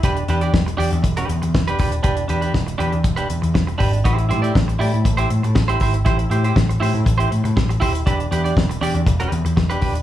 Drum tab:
HH |xxxx-xoxxxxx-xox|xxxx-xxxxxxx-xox|xxxx-xoxxxxx-xox|xxxx-xoxxxxx-xox|
SD |----o-------o---|----o-------o---|----o-------o---|----o-------o---|
BD |o---o---o---o-o-|o---o---o---o-o-|o---o---o---o-o-|o---o---o---o-o-|

HH |xxxx-xoxxxxx-xox|
SD |----o-------o---|
BD |o---o---o---o-o-|